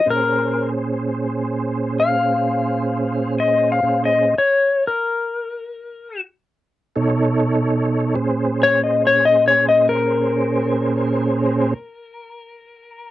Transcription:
<<
  \new Staff \with { instrumentName = "Electric slide guitar" } { \time 12/8 \key bes \minor \tempo 4. = 56 bes'4 r2 f''2~ f''16 ees''8 f''16~ | f''16 ees''8 des''8. bes'2 r2 r8 | r8 des''16 ees''16 des''16 ees''16 des''16 ees''16 bes'1 | }
  \new Staff \with { instrumentName = "Tonewheel organ" } { \time 12/8 \key bes \minor <bes, des' aes' c''>1. | <bes, des' aes' c''>4 r2. r8 <b, dis' a' des''>4. | <bes, des' aes' c''>1. | }
>>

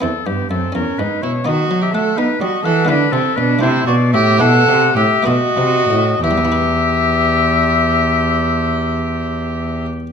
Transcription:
<<
  \new Staff \with { instrumentName = "Oboe" } { \time 6/8 \key e \minor \tempo 4. = 74 a'8 g'8 a'8 ais'8 b'8 cis''8 | dis''8. e''16 fis''8 b'8 dis''8 fis''8 | b'8 a'8 b'8 c''8 d''8 e''8 | fis''4 e''8 dis''4. |
e''2.~ | e''2. | }
  \new Staff \with { instrumentName = "Violin" } { \time 6/8 \key e \minor c'8 b8 c'8 cis'8 dis'8 e'8 | fis'8. g'16 a'8 dis'8 fis'8 a'8 | d'8 c'8 d'8 e'8 fis'8 g'8 | a'4 g'8 fis'4. |
g'2.~ | g'2. | }
  \new Staff \with { instrumentName = "Harpsichord" } { \clef bass \time 6/8 \key e \minor << { <b e'>4. cis'4. | <b dis'>2. | <gis b e'>4. <a e'>4. | <b e'>4. <a b fis'>4. |
<e g b e' b'>2.~ | <e g b e' b'>2. | } \\ { e,8 g,8 fis,8 e,8 gis,8 b,8 | dis8 fis8 a8 b8 g8 e8 | d8 c8 b,8 c8 b,8 a,8 | b,8 c8 a,8 b,8 c8 a,8 |
r2. | r2. | } >> }
  \new Staff \with { instrumentName = "Cello" } { \clef bass \time 6/8 \key e \minor e,8 g,8 fis,8 e,8 gis,8 b,8 | dis8 fis8 a8 b8 g8 e8 | d8 c8 b,8 c8 b,8 a,8 | b,8 c8 a,8 b,8 c8 a,8 |
e,2.~ | e,2. | }
>>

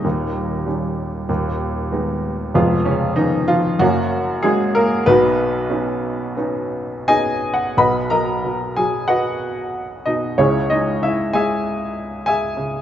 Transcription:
<<
  \new Staff \with { instrumentName = "Upright piano" } { \time 4/4 \key b \major \tempo 4 = 94 << { r1 | r1 | r2. \tuplet 3/2 { r4 fis''8 } | r1 |
r1 | } \\ { <dis g ais dis'>2 r2 | <eis gis b eis'>8 <cis cis'>8 <dis dis'>8 <eis eis'>8 <fis ais cis' fis'>4 <gis gis'>8 <ais ais'>8 | <b dis' fis' b'>2. <gis' dis'' gis''>4 | <b' dis'' fis'' b''>8 <ais' dis'' ais''>4 <gis' gis''>8 <fis' b' dis'' fis''>4. <dis' dis''>8 |
<cis' e' gis' cis''>8 <dis' dis''>8 <e' e''>8 <gis' e'' gis''>4. <gis' e'' gis''>4 | } >> }
  \new Staff \with { instrumentName = "Upright piano" } { \clef bass \time 4/4 \key b \major <dis,, dis,>4 <g cis' dis'>4 <dis,, dis,>4 <gis b dis'>4 | <eis,, eis,>4 <eis b cis'>4 <fis,, fis,>4 <fis ais cis'>4 | <b,, b,>4 <b cis' dis'>4 <b cis' dis'>4 <b cis' dis'>4 | <b,, b,>8 fis8 b,8 fis2 b,8 |
<cis, cis>8 gis8 cis8 gis2 cis8 | }
>>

